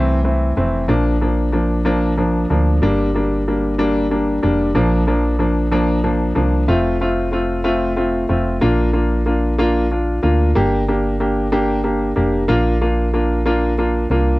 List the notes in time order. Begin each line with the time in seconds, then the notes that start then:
Already playing: C2 E3 A3 C4
0.24 E3 A3 C4
0.57 F1 E3 A3 C4
0.88 A#1 F3 A#3 D4
1.21 F3 A#3 D4
1.52 F3 A#3 D4
1.85 F3 A#3 D4
2.18 F3 A#3 D4
2.50 D2 F3 A#3 D4
2.82 G1 G3 A#3 D4
3.15 G3 A#3 D4
3.48 G3 A#3 D4
3.78 G3 A#3 D4
4.11 G3 A#3 D4
4.43 F1 G3 A#3 D4
4.75 A#1 F3 A#3 D4
5.07 F3 A#3 D4
5.39 F3 A#3 D4
5.71 F3 A#3 D4
6.04 F3 A#3 D4
6.35 C2 F3 A#3 D4
6.68 F1 A3 C4 F4
7.01 A3 C4 F4
7.32 A3 C4 F4
7.64 A3 C4 F4
7.96 A3 C4 F4
8.29 F1 A3 C4 F4
8.61 A#1 A#3 D4 F4
8.93 A#3 D4 F4
9.26 A#3 D4 F4
9.58 A#3 D4 F4
9.91 D4 F4
10.23 D2 A#3 D4 F4
10.55 G1 A#3 D4 G4
10.88 A#3 D4 G4
11.20 A#3 D4 G4
11.52 A#3 D4 G4
11.84 A#3 D4 G4
12.16 F1 A#3 D4 G4
12.48 A#1 A#3 D4 F4
12.82 A#3 D4 F4
13.14 A#3 D4 F4
13.46 A#3 D4 F4
13.78 A#3 D4 F4
14.10 C2 A#3 D4 F4